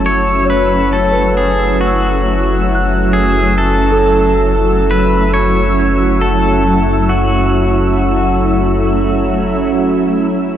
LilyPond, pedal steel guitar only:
\new Staff \with { instrumentName = "Pedal steel guitar" } { \time 4/4 \key fis \minor \tempo 4 = 68 cis''8 b'8 a'8 gis'8 fis'4. gis'8 | a'4. b'8 cis''4 a'4 | fis'2. r4 | }